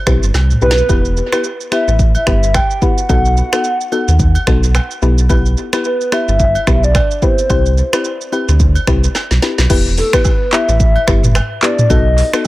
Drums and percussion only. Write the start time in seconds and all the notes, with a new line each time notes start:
0.07 finger snap, kick, cross-stick, shaker
0.23 shaker
0.34 snare, high agogo, low woodblock, shaker
0.51 mid tom, shaker
0.62 shaker
0.71 snare
0.78 shaker
0.89 kick, high agogo, shaker
1.05 shaker
1.17 shaker
1.32 finger snap, cross-stick, high agogo, shaker
1.44 shaker
1.61 shaker
1.72 finger snap, cross-stick, high agogo, shaker
1.88 shaker
1.99 kick, shaker
2.15 high agogo, shaker
2.27 finger snap, kick, cross-stick, shaker
2.43 shaker
2.54 finger snap, kick, cross-stick, high agogo, low woodblock, shaker
2.71 shaker
2.82 kick, shaker
2.98 shaker
3.09 kick, high agogo, shaker
3.25 shaker
3.37 shaker
3.53 finger snap, cross-stick, high agogo, shaker
3.64 shaker
3.81 shaker
3.92 high agogo, shaker
4.08 shaker
4.19 kick, shaker
4.35 high agogo, shaker
4.47 finger snap, kick, cross-stick, shaker
4.63 shaker
4.75 finger snap, cross-stick, high agogo, low woodblock, shaker
4.91 shaker
5.02 shaker
5.18 shaker
5.29 kick, high agogo, shaker
5.46 shaker
5.57 shaker
5.73 finger snap, cross-stick, high agogo, shaker
5.84 shaker
6.01 shaker
6.12 finger snap, cross-stick, high agogo, shaker
6.28 shaker
6.39 kick, shaker
6.55 high agogo, shaker
6.67 finger snap, kick, cross-stick, shaker
6.84 shaker
6.95 finger snap, kick, cross-stick, high agogo, low woodblock, shaker
7.11 shaker
7.22 kick, shaker
7.38 shaker
7.50 kick, high agogo, shaker
7.66 shaker
7.78 shaker
7.93 finger snap, cross-stick, high agogo, shaker
8.05 shaker
8.21 shaker
8.33 high agogo, shaker
8.49 shaker
8.60 kick, shaker
8.75 high agogo, shaker
8.87 finger snap, kick, cross-stick, shaker
9.04 shaker
9.15 snare, high agogo, low woodblock, shaker
9.31 snare, shaker
9.42 snare, shaker
9.58 snare, shaker
9.70 kick, crash, high agogo, shaker
9.98 open hi-hat, shaker
10.13 finger snap, kick, cross-stick, high agogo, shaker
10.24 kick, low woodblock, shaker
10.53 clap, high agogo, shaker
10.69 shaker
10.80 kick, shaker
10.96 high agogo
11.08 finger snap, kick, cross-stick, shaker
11.23 mid tom, shaker
11.35 finger snap, cross-stick, high agogo, low woodblock, shaker
11.62 clap, shaker
11.79 mid tom, shaker
11.90 kick, high agogo, shaker
12.18 open hi-hat, shaker
12.33 finger snap, cross-stick, high agogo, shaker